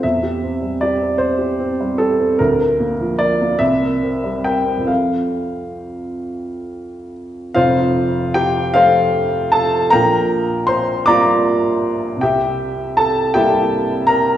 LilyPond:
<<
  \new Staff \with { instrumentName = "Upright piano" } { \time 6/8 \key f \major \tempo 4. = 51 e''4 d''8 c''4 a'8 | bes'4 d''8 e''4 g''8 | f''2~ f''8 r8 | <f' c'' f''>4 <g' g''>8 <f' c'' f''>4 <a' a''>8 |
<bes' g'' bes''>4 <c'' c'''>8 <d'' bes'' d'''>4. | <g' e'' g''>4 <a' a''>8 <g' e'' g''>4 <bes' bes''>8 | }
  \new Staff \with { instrumentName = "Upright piano" } { \time 6/8 \key f \major e,16 g'16 c'16 g16 g'16 c'8 g'16 c'16 g16 g'16 c'16 | d,16 bes'16 bes16 f16 bes'16 bes16 c,16 bes'16 c'16 g16 bes'16 c'16 | <f, f c' a'>2. | <f,, f,>4. <f a>4. |
<bes,, bes,>4. <g bes f'>4. | <c, c>4. <g bes e'>4. | }
>>